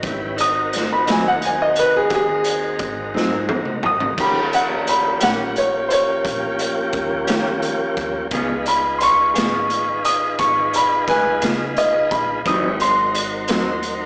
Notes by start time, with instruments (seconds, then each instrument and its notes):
0.03 upright bass G#1, tonewheel organ C#4 E4 G4 B4, kick, closed hi-hat
0.37 tonewheel organ C4 D#4 F#4 A#4, upright piano D#6, closed hi-hat
0.73 snare, closed hi-hat
0.92 upright piano B5
1.07 upright bass D#2, clean electric guitar G#2 F#3 C4 D#4, upright piano G#5, snare, closed hi-hat
1.28 upright piano F#5
1.42 upright piano G#5, closed hi-hat
1.62 upright piano D#5
1.76 upright piano B4, closed hi-hat
1.97 upright piano G#4
2.10 upright bass D#2, upright piano G4, kick, closed hi-hat
2.15 upright piano G#4
2.44 closed hi-hat
2.79 upright bass G#1, kick, closed hi-hat
3.14 upright bass G#2, clean electric guitar G#2 F#3 C4 D#4, snare
3.49 high tom
3.65 mid tom
3.83 upright bass G#1, upright piano D#6, mid tom
4.00 floor tom
4.17 upright bass D#2, clean electric guitar D#3 A#3 C#4 G4, tonewheel organ F3 A#3 C#4 G4, upright piano B5, kick, closed hi-hat, crash
4.53 upright piano F#5, closed hi-hat
4.87 upright piano B5, closed hi-hat
5.20 upright bass A#1, clean electric guitar D#3 A#3 C#4 G4, upright piano F#5, snare, closed hi-hat
5.56 upright piano C#5, closed hi-hat
5.88 upright piano C5, closed hi-hat
5.93 upright piano C#5
6.25 upright bass A#1, kick, closed hi-hat
6.59 closed hi-hat
6.93 upright bass D#2, kick, closed hi-hat
7.27 upright bass D#3, clean electric guitar D#3 A#3 C#4 G4, snare, closed hi-hat
7.62 closed hi-hat
7.97 upright bass D#2, kick, closed hi-hat
8.31 upright bass C#2, clean electric guitar C#3 B3 F4 G#4, tonewheel organ D#4 F4 G#4 B4, kick, closed hi-hat
8.66 upright piano B5, closed hi-hat
8.98 upright piano C6, closed hi-hat
9.03 upright piano C#6
9.34 upright bass G#1, clean electric guitar C#3 B3 F4 G#4, closed hi-hat
9.38 snare
9.70 closed hi-hat
10.05 upright piano D#6, closed hi-hat
10.39 upright bass G#1, upright piano C#6, kick, closed hi-hat
10.73 upright piano B5, closed hi-hat
11.08 upright bass C#2, upright piano B4 G#5, kick, snare, closed hi-hat
11.42 upright bass C#3, clean electric guitar C#3 B3 F4 G#4, snare, closed hi-hat
11.77 upright piano D#5, closed hi-hat
12.11 upright bass A#1, upright piano B5, kick, closed hi-hat
12.45 upright bass G#1, clean electric guitar G#2 F#3 C4 D#4, tonewheel organ E4 G4 B4 C#5, upright piano D#6, kick, closed hi-hat
12.79 tonewheel organ D#4 F#4 A#4 C5, upright piano C6, closed hi-hat
13.15 closed hi-hat
13.48 upright bass D#2, clean electric guitar G#2 F#3 C4 D#4, snare, closed hi-hat
13.83 closed hi-hat